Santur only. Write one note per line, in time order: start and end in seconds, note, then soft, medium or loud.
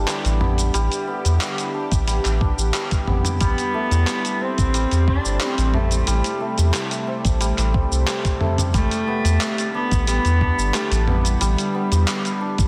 0.00 2.18 A3 medium
0.00 0.40 B3 medium
0.00 1.74 D4 medium
0.07 0.73 G3 medium
0.41 1.07 B3 medium
0.74 1.40 G3 loud
1.08 3.07 B3 medium
1.41 2.06 G3 medium
1.74 2.40 D4 medium
2.07 2.73 G3 medium
2.41 6.14 D4 medium
2.74 3.40 G3 medium
3.07 4.47 B3 medium
3.41 3.90 G3 loud
3.74 5.73 A3 medium
3.92 4.73 G3 medium
4.41 5.07 C4 medium
4.74 5.39 G3 medium
5.08 7.07 C4 medium
5.41 6.06 G3 medium
5.74 6.40 A3 medium
6.07 6.57 G3 medium
6.40 8.40 A3 medium
6.58 7.39 G3 medium
7.07 7.74 C4 medium
7.41 8.06 G3 medium
7.74 9.14 C4 medium
8.07 8.73 G3 medium
8.41 12.68 A3 medium
8.74 9.24 G3 loud
9.08 11.07 B3 medium
9.25 10.07 G3 medium
9.75 10.41 D4 medium
10.08 10.73 G3 medium
10.41 12.41 D4 medium
10.74 11.40 G3 medium
11.08 11.74 B3 medium
11.41 11.90 G3 loud
11.74 12.68 B3 medium
11.92 12.68 G3 medium
12.41 12.68 D4 medium